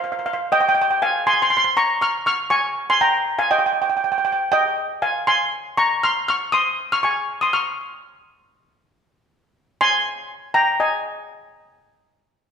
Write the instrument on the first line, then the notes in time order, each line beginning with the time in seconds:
steel pan
0.04 F5
0.12 F5
0.19 F5
0.26 F5
0.33 F5
0.52 D#5 G5
0.61 G5
0.69 G5
0.75 G5
0.82 G5
0.91 G5
1.02 F5 G#5
1.27 G#5 C6
1.34 C6
1.42 C6
1.50 C6
1.57 C6
1.65 C6
1.77 A#5 C#6
2.02 C#6 F6
2.26 C#6 F6
2.50 G#5 C#6
2.90 G#5 C6
3.01 G5 A#5
3.39 F5 G#5
3.51 D#5 G5
3.59 G5
3.66 G5
3.73 G5
3.82 G5
3.90 G5
3.97 G5
4.04 G5
4.12 G5
4.18 G5
4.25 G5
4.32 G5
4.52 D#5 G5
5.02 F5 G#5
5.27 G#5 C6
5.77 A#5 C#6
6.03 C6 F6
6.28 C#6 F6
6.52 C6 D#6
6.92 C#6 F6
7.03 G#5 C#6
7.41 C6 D#6
7.53 C#6 F6
9.81 G#5 C6
10.54 G5 A#5
10.80 D#5 G#5